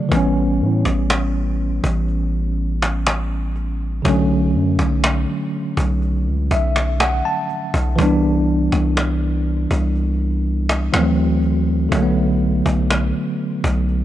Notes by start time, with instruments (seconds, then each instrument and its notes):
Already playing: tine electric piano C#3 D3 F#3 A3 D5
0.09 808-style bass A1, tine electric piano E3 G3, cajon bass
0.13 tine electric piano B3 C#4
0.61 808-style bass A2
0.85 808-style bass A1, cajon bass, cajon slap
1.10 cajon slap
1.84 808-style bass A1, cajon bass
2.08 cajon slap
2.82 cajon slap
3.07 cajon slap
3.56 cajon slap
4.02 808-style bass B1, tine electric piano C#3 F#3, cajon bass
4.07 tine electric piano D3 A3 C#4
4.55 808-style bass F#2
4.79 808-style bass B1, cajon bass, cajon slap
5.04 cajon slap
5.77 808-style bass B1, cajon bass
6.02 cajon slap
6.27 808-style bass C#2
6.51 808-style bass B1, tine electric piano E5, cajon bass
6.76 cajon slap
7.00 tine electric piano F#5, cajon slap
7.25 tine electric piano A5
7.49 cajon slap
7.74 808-style bass B1, cajon bass
7.96 808-style bass C2, tine electric piano E3 G3, cajon bass
8.00 tine electric piano B3 D4
8.72 808-style bass C2, cajon bass, cajon slap
8.97 cajon slap
9.71 808-style bass C2, cajon bass
9.95 cajon slap
10.69 cajon slap
10.93 808-style bass D2, tine electric piano E3 F3 A3 C4, cajon slap
11.00 tine electric piano F#3
11.43 cajon slap
11.89 808-style bass B1, tine electric piano D3 F#3, cajon bass
11.94 tine electric piano A3 A#3
12.03 tine electric piano B3
12.66 808-style bass B1, cajon bass
12.90 cajon slap
13.64 808-style bass B1, cajon bass
13.89 cajon slap